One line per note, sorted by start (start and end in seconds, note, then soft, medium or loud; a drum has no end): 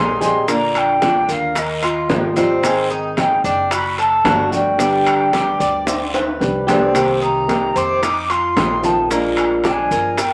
0.00 1.22 A#1 medium
0.00 0.20 G3 soft
0.00 0.20 C4 soft
0.00 0.20 D#4 soft
0.00 0.47 D#4 medium
0.00 0.19 G#4 medium
0.00 0.22 C6 loud
0.21 0.47 G3 soft
0.21 0.48 C4 medium
0.21 0.47 D#4 medium
0.21 0.47 G#4 medium
0.21 0.48 C6 medium
0.21 high bongo soft
0.21 high conga medium
0.21 short guiro medium
0.21 maracas medium
0.48 1.00 D3 medium
0.48 1.00 A#3 medium
0.48 1.01 A#3 medium
0.48 1.01 D4 medium
0.48 1.01 F4 medium
0.48 0.79 A#5 loud
0.48 high bongo medium
0.48 high conga soft
0.48 high timbale medium
0.48 long guiro medium
0.48 maracas medium
0.75 1.33 G5 medium
0.75 high bongo soft
0.75 high conga soft
0.75 high timbale medium
0.75 maracas soft
1.01 1.54 D3 soft
1.01 1.55 A#3 soft
1.01 1.28 D4 medium
1.01 1.55 D4 soft
1.01 1.55 F4 soft
1.01 high bongo medium
1.01 high conga medium
1.01 high timbale medium
1.01 low timbale medium
1.01 short guiro medium
1.01 maracas soft
1.28 2.06 D#2 medium
1.28 1.81 A#4 medium
1.28 1.60 F5 medium
1.28 high bongo soft
1.28 short guiro medium
1.28 maracas medium
1.55 2.38 D#5 medium
1.55 muted nylon-string guitar stroke medium
1.55 high bongo medium
1.55 high conga soft
1.55 high timbale medium
1.55 long guiro medium
1.55 maracas medium
1.83 2.35 F4 medium
1.83 high conga soft
1.83 high timbale medium
1.83 maracas soft
2.09 3.38 G#1 medium
2.09 2.35 D#3 soft
2.09 2.36 G3 soft
2.09 2.36 D#4 soft
2.09 2.35 F4 soft
2.09 high bongo soft
2.09 low bongo medium
2.09 high conga medium
2.09 low timbale medium
2.09 short guiro medium
2.09 maracas soft
2.36 2.63 G3 soft
2.36 2.89 C4 medium
2.36 2.62 D#4 medium
2.36 2.63 F4 medium
2.36 high bongo soft
2.36 high conga medium
2.36 high timbale medium
2.36 short guiro medium
2.36 maracas medium
2.62 3.16 D#3 medium
2.62 3.16 C4 medium
2.62 3.17 D#4 medium
2.62 3.17 G#4 medium
2.62 high bongo medium
2.62 high timbale medium
2.62 long guiro medium
2.62 maracas medium
2.90 3.43 D#4 medium
2.90 high bongo soft
2.90 high conga soft
2.90 maracas soft
3.17 3.70 C4 soft
3.17 3.71 D#4 medium
3.17 3.71 G#4 soft
3.17 3.43 G5 medium
3.17 high bongo medium
3.17 high conga medium
3.17 high timbale medium
3.17 low timbale medium
3.17 short guiro medium
3.17 maracas soft
3.44 4.21 F#1 medium
3.44 3.71 D4 medium
3.44 3.70 G5 medium
3.44 high bongo soft
3.44 high conga soft
3.44 short guiro medium
3.44 maracas medium
3.71 3.98 F#4 medium
3.71 3.97 B5 loud
3.71 muted nylon-string guitar stroke medium
3.71 high bongo medium
3.71 high conga soft
3.71 high timbale medium
3.71 long guiro medium
3.71 maracas medium
3.98 4.25 A4 medium
3.98 4.49 A5 medium
3.98 high conga soft
3.98 high timbale medium
3.98 maracas soft
4.24 5.53 G1 medium
4.24 4.51 D3 soft
4.24 4.51 A3 soft
4.24 4.51 D4 soft
4.24 4.78 F#4 medium
4.24 4.50 F#4 soft
4.24 high bongo soft
4.24 low bongo medium
4.24 high conga medium
4.24 high timbale medium
4.24 low timbale medium
4.24 short guiro medium
4.24 maracas soft
4.51 4.78 A3 soft
4.51 4.78 D4 medium
4.51 4.78 F#4 medium
4.51 6.11 G5 medium
4.51 high bongo soft
4.51 high conga medium
4.51 short guiro medium
4.51 maracas medium
4.78 5.32 D3 medium
4.78 5.31 G3 medium
4.78 5.32 B3 medium
4.78 5.32 D4 medium
4.78 5.32 G4 medium
4.78 high bongo medium
4.78 high timbale medium
4.78 long guiro medium
4.78 maracas medium
5.06 high bongo soft
5.06 high conga soft
5.06 high timbale loud
5.06 maracas soft
5.32 5.85 G3 soft
5.32 5.85 B3 soft
5.32 5.86 D4 soft
5.32 5.59 G4 medium
5.32 5.86 G4 soft
5.32 high bongo medium
5.32 high conga medium
5.32 high timbale medium
5.32 low timbale soft
5.32 short guiro medium
5.32 maracas soft
5.60 6.37 D2 medium
5.60 6.13 D5 medium
5.60 high bongo soft
5.60 high conga soft
5.60 short guiro medium
5.60 maracas medium
5.86 muted nylon-string guitar stroke medium
5.86 high bongo medium
5.86 high conga soft
5.86 high timbale medium
5.86 long guiro medium
5.86 maracas medium
6.14 6.66 B4 medium
6.14 high conga soft
6.14 high timbale medium
6.14 maracas soft
6.40 7.69 C2 medium
6.40 6.66 G3 soft
6.40 6.67 B3 soft
6.40 6.67 D4 soft
6.40 6.66 G4 soft
6.40 high bongo soft
6.40 low bongo medium
6.40 high conga medium
6.40 short guiro medium
6.40 maracas soft
6.67 6.94 G3 soft
6.67 6.94 B3 medium
6.67 7.20 C4 medium
6.67 6.94 D4 medium
6.67 6.93 G4 medium
6.67 high bongo soft
6.67 high conga medium
6.67 low timbale loud
6.67 short guiro medium
6.67 maracas medium
6.94 7.47 C3 medium
6.94 7.46 D#3 medium
6.94 7.47 A#3 medium
6.94 7.47 C4 medium
6.94 7.48 G4 medium
6.94 high bongo medium
6.94 high conga soft
6.94 high timbale medium
6.94 long guiro medium
6.94 maracas medium
7.22 7.74 D#4 medium
7.22 7.79 A#5 medium
7.22 high bongo soft
7.22 high conga soft
7.22 maracas soft
7.47 8.01 D#3 soft
7.47 8.01 A#3 soft
7.47 8.01 C4 soft
7.47 8.02 G4 soft
7.47 high bongo medium
7.47 high conga medium
7.47 high timbale medium
7.47 low timbale medium
7.47 short guiro medium
7.47 maracas soft
7.76 8.52 F2 medium
7.76 8.02 C4 medium
7.76 8.32 D6 loud
7.76 high bongo soft
7.76 high conga soft
7.76 short guiro medium
7.76 maracas medium
8.02 8.29 D#4 medium
8.02 muted nylon-string guitar stroke soft
8.02 high bongo medium
8.02 high conga soft
8.02 high timbale medium
8.02 long guiro medium
8.02 maracas medium
8.30 8.56 F4 medium
8.30 8.86 C6 medium
8.30 high conga soft
8.30 high timbale medium
8.30 maracas soft
8.56 9.84 A#1 medium
8.56 8.82 D#3 soft
8.56 8.82 A3 soft
8.56 8.82 C4 soft
8.56 9.09 D#4 medium
8.56 8.81 F4 medium
8.56 high bongo soft
8.56 low bongo medium
8.56 high conga medium
8.56 high timbale medium
8.56 low timbale medium
8.56 short guiro medium
8.56 maracas soft
8.83 9.10 D#3 medium
8.83 9.09 A3 medium
8.83 9.09 C4 medium
8.83 9.09 F4 medium
8.83 9.11 A5 medium
8.83 high bongo soft
8.83 high conga medium
8.83 short guiro medium
8.83 maracas medium
9.10 9.63 F3 medium
9.10 9.63 G#3 medium
9.10 9.63 A#3 medium
9.10 9.64 D4 medium
9.10 9.64 F4 medium
9.10 9.18 A#5 medium
9.10 high bongo medium
9.10 high conga soft
9.10 high timbale medium
9.10 long guiro medium
9.10 maracas medium
9.37 9.45 G#5 medium
9.37 high bongo soft
9.37 high conga soft
9.37 high timbale medium
9.37 maracas soft
9.64 10.17 F3 soft
9.64 10.17 G#3 soft
9.64 9.90 D4 medium
9.64 10.17 D4 soft
9.64 10.18 F4 medium
9.64 10.21 G#5 medium
9.64 high bongo medium
9.64 high conga medium
9.64 high timbale medium
9.64 low timbale medium
9.64 short guiro medium
9.64 maracas soft
9.91 10.33 G1 medium
9.91 10.33 A#4 medium
9.91 high bongo soft
9.91 high conga soft
9.91 short guiro medium
9.91 maracas medium
10.18 10.33 G5 medium
10.18 muted nylon-string guitar stroke medium
10.18 high bongo medium
10.18 high conga soft
10.18 high timbale medium
10.18 long guiro medium
10.18 maracas medium